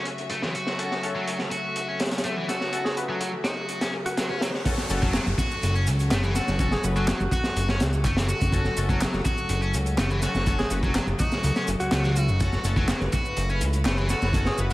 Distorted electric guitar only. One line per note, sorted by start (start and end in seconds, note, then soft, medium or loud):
0.31 0.41 A3 medium
0.43 0.53 E3 medium
0.55 1.02 F#4 medium
1.15 1.26 F#3 medium
1.27 1.38 F#3 loud
1.52 1.87 F#4 medium
1.88 1.99 C#4 medium
2.24 2.34 A3 loud
2.36 2.46 E3 loud
2.48 2.95 F#4 medium
3.09 3.19 F#3 medium
3.20 3.31 F#3 loud
3.45 3.80 F#4 medium
3.81 3.93 C#4 medium
4.18 4.28 F#3 medium
4.30 4.41 C#4 medium
4.42 4.48 F#3 medium
5.02 5.13 F#3 loud
5.14 5.25 F#3 loud
5.39 5.74 F#4 medium
5.75 5.86 C#4 loud
6.11 6.22 A3 loud
6.23 6.33 E3 loud
6.35 6.83 F#4 medium
6.96 7.07 F#3 loud
7.08 7.18 F#3 loud
7.33 7.68 F#4 medium
7.69 7.80 C#4 loud
8.05 8.15 A3 loud
8.17 8.27 E3 loud
8.29 8.76 F#4 medium
8.89 9.00 F#3 loud
9.01 9.12 F#3 loud
9.25 9.61 F#4 medium
9.62 9.73 C#4 loud
9.98 10.08 A3 loud
10.10 10.20 E3 loud
10.22 10.70 F#4 medium
10.83 10.94 F#3 loud
10.95 11.05 F#3 loud
11.19 11.55 F#4 medium
11.56 11.67 C#4 loud
11.92 12.02 A3 loud
12.05 12.14 E3 loud
12.16 12.63 F#4 medium
12.77 12.88 F#3 loud
12.89 12.99 F#3 loud
13.13 13.48 F#4 medium
13.50 13.61 C#4 loud
13.86 13.96 A3 loud
13.98 14.08 E3 loud
14.10 14.57 F#4 medium